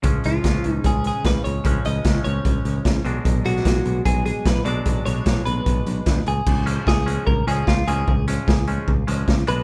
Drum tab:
CC |----------------|----------------|----------------|----------------|
HH |x-x-x-x-x-x-x-x-|x-x-x-x-x-x-x-x-|x-x-x-x-x-x-x-x-|x-x-x-x-x-x-x-x-|
SD |----o-------o---|----o-------o---|---oo-------o---|----o-------o---|
BD |o---o---o---o---|o---o---o---o---|o---o---o---o---|o---o---o---o---|

CC |x---------------|----------------|
HH |--x---x---x---x-|--x---x---x---x-|
SD |----o-------o---|----o-------o---|
BD |o---o---o---o---|o---o---o---o---|